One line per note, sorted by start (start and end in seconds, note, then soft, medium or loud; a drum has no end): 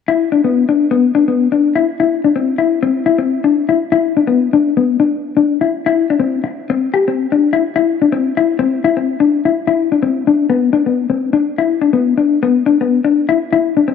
0.08 0.28 E4 medium
0.32 0.41 D4 medium
0.44 0.64 B3 medium
0.69 0.88 D4 medium
0.91 1.11 B3 medium
1.15 1.26 D4 medium
1.28 1.48 B3 medium
1.52 1.72 D4 medium
1.76 1.85 E4 medium
2.00 2.20 E4 medium
2.24 2.34 D4 medium
2.36 2.55 C4 medium
2.58 2.79 E4 medium
2.83 3.03 C4 medium
3.06 3.17 E4 medium
3.18 3.39 C4 medium
3.44 3.64 D4 medium
3.69 3.78 E4 medium
3.92 4.12 E4 medium
4.17 4.26 D4 medium
4.27 4.47 B3 medium
4.53 4.72 D4 medium
4.77 4.96 B3 medium
5.00 5.10 D4 medium
5.37 5.56 D4 medium
5.61 5.70 E4 medium
5.86 6.05 E4 medium
6.10 6.19 D4 medium
6.20 6.39 C4 medium
6.44 muted clean electric guitar stroke medium
6.70 6.89 C4 medium
6.94 7.03 G4 medium
7.08 7.26 C4 medium
7.32 7.50 D4 medium
7.53 7.62 E4 medium
7.76 7.96 E4 medium
8.02 8.10 D4 medium
8.12 8.32 C4 medium
8.37 8.56 E4 medium
8.59 8.79 C4 medium
8.84 8.94 E4 medium
8.97 9.16 C4 medium
9.20 9.40 D4 medium
9.45 9.54 E4 medium
9.67 9.87 E4 medium
9.92 10.01 D4 medium
10.03 10.22 C4 medium
10.27 10.47 D4 medium
10.50 10.70 B3 medium
10.73 10.84 D4 medium
10.86 11.07 B3 medium
11.10 11.30 C4 medium
11.33 11.43 D4 medium
11.58 11.79 E4 medium
11.81 11.92 D4 medium
11.93 12.14 B3 medium
12.18 12.38 D4 medium
12.43 12.62 B3 medium
12.66 12.77 D4 medium
12.81 13.00 B3 medium
13.05 13.24 D4 medium
13.29 13.37 E4 medium
13.53 13.72 E4 medium
13.77 13.85 D4 medium
13.88 13.95 C4 medium